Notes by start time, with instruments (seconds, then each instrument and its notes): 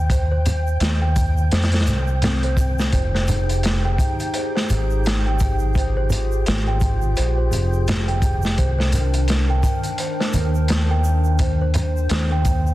Already playing: fingered electric bass D#2, celesta C5 G5, synth texture G5
0.10 celesta C5, kick, closed hi-hat, shaker
0.31 celesta C5
0.46 closed hi-hat, low conga, shaker
0.67 shaker
0.80 fingered electric bass D#2, snare, closed hi-hat, shaker
1.02 celesta G5
1.16 kick, closed hi-hat, shaker
1.37 shaker
1.51 fingered electric bass F2, celesta C5, snare, closed hi-hat, shaker
1.62 snare, closed hi-hat
1.72 celesta C5, snare, closed hi-hat
1.80 snare, closed hi-hat
1.87 fingered electric bass C2, closed hi-hat, low conga, shaker
2.07 shaker
2.22 celesta C4, snare, closed hi-hat, low conga, shaker
2.43 celesta C5, closed hi-hat
2.57 kick, closed hi-hat, shaker
2.79 snare, shaker
2.92 fingered electric bass F1, ambient pad D#4 G4 G#4, celesta C5, kick, closed hi-hat, shaker
3.15 celesta C5, snare
3.28 closed hi-hat, low conga, shaker
3.49 closed hi-hat, shaker
3.63 snare, closed hi-hat, shaker
3.85 celesta G5
3.98 kick, closed hi-hat, shaker
4.20 closed hi-hat, shaker
4.34 celesta C5, closed hi-hat, shaker
4.55 celesta C5, snare
4.70 fingered electric bass G#1, closed hi-hat, low conga, shaker
4.90 shaker
5.04 snare, closed hi-hat, shaker
5.26 celesta G5
5.39 kick, closed hi-hat, shaker
5.59 shaker
5.74 ambient pad F4, celesta C5, kick, closed hi-hat, shaker
5.97 celesta C5
6.10 closed hi-hat, low conga, shaker
6.32 shaker
6.46 fingered electric bass G#1, snare, closed hi-hat, shaker
6.67 celesta G5
6.81 kick, closed hi-hat, shaker
7.01 shaker
7.16 fingered electric bass A#1, celesta C5, closed hi-hat, shaker
7.38 celesta C5
7.51 fingered electric bass F1, closed hi-hat, low conga, shaker
7.73 shaker
7.87 snare, closed hi-hat, low conga, shaker
8.08 celesta G5, closed hi-hat
8.22 kick, closed hi-hat, shaker
8.42 snare, shaker
8.57 fingered electric bass C2, ambient pad D#3 D4 A#4, celesta C5, kick, closed hi-hat, shaker
8.79 celesta C5, snare
8.92 closed hi-hat, low conga, shaker
9.14 closed hi-hat, shaker
9.28 snare, closed hi-hat, shaker
9.50 celesta G5
9.63 kick, closed hi-hat, shaker
9.83 closed hi-hat, shaker
9.98 celesta C5, closed hi-hat, shaker
10.20 celesta C5, snare
10.33 fingered electric bass D#2, closed hi-hat, low conga, shaker
10.55 shaker
10.68 snare, closed hi-hat, shaker
10.91 celesta G5
11.04 shaker
11.24 shaker
11.38 ambient pad C5, celesta C5, kick, closed hi-hat, shaker
11.61 celesta C5
11.74 closed hi-hat, low conga, shaker
11.97 shaker
12.09 fingered electric bass D#2, snare, closed hi-hat, shaker
12.32 celesta G5
12.45 kick, closed hi-hat, shaker
12.67 shaker